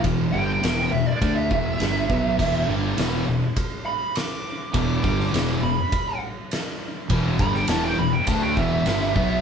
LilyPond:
<<
  \new Staff \with { instrumentName = "Lead electric guitar" } { \time 4/4 \key e \minor \tempo 4 = 102 r8 g''4 e''16 d''8 e''16 e''4.~ | e''8 r2 b''8 d'''4 | d'''4. b''4 r4. | r8 b''16 g''16 a''16 g''16 b''16 g''16 a''16 g''16 e''4. | }
  \new Staff \with { instrumentName = "Distorted electric guitar" } { \clef bass \time 4/4 \key e \minor <e, b, e>8 <g, d g>8 <e, b, e>8 <e, b,>16 r16 <d a d'>8 <e, b, e>8 <g, d g>8 <b, fis b>8 | <e, b, e>8 <g, d g>8 <e, b, e>8 <e, b,>16 r2 r16 | <e, b, e>8 <g, d g>8 <e, b, e>8 <e, b,>16 r2 r16 | <e, b, e>8 <g, d g>8 <e, b, e>8 <e, b,>16 r16 <d a d'>8 <e, b, e>8 <g, d g>8 <b, fis b>8 | }
  \new Staff \with { instrumentName = "Distorted electric guitar" } { \clef bass \time 4/4 \key e \minor <e, b, e>8 <g, d g>8 <e, b, e>8 <e, b,>16 r16 <d a d'>8 <e, b, e>8 <g, d g>8 <b, fis b>8 | <e, b, e>8 <g, d g>8 <e, b, e>8 <e, b,>16 r2 r16 | <e, b, e>8 <g, d g>8 <e, b, e>8 <e, b,>16 r2 r16 | <e, b, e>8 <g, d g>8 <e, b, e>8 <e, b,>16 r16 <d a d'>8 <e, b, e>8 <g, d g>8 <b, fis b>8 | }
  \new Staff \with { instrumentName = "Distorted electric guitar" } { \clef bass \time 4/4 \key e \minor r1 | <e, b, e>8 <g, d g>8 <e, b, e>8 <e, b,>16 r2 r16 | <e, b, e>8 <g, d g>8 <e, b, e>8 <e, b,>16 r2 r16 | <e, b, e>8 <g, d g>8 <e, b, e>8 <e, b,>16 r16 <d a d'>8 <e, b, e>8 <g, d g>8 <b, fis b>8 | }
  \new Staff \with { instrumentName = "Fingered electric bass" } { \clef bass \time 4/4 \key e \minor e,,8 g,,8 e,,8 e,,16 r16 d,8 e,,8 g,,8 b,,8 | e,,8 g,,8 e,,8 e,,16 r2 r16 | e,,8 g,,8 e,,8 e,,16 r2 r16 | e,,8 g,,8 e,,8 e,,16 r16 d,8 e,,8 g,,8 b,,8 | }
  \new DrumStaff \with { instrumentName = "Drums" } \drummode { \time 4/4 <bd rb>4 <rb sn>4 <bd rb>8 bd8 <rb sn>8 bd8 | <cymc bd>4 <rb sn>4 <bd rb>4 <rb sn>4 | <bd rb>8 bd16 sn16 <rb sn>4 <bd rb>4 <rb sn>4 | <bd rb>8 bd16 sn16 <rb sn>4 <bd rb>8 bd8 <rb sn>8 bd8 | }
>>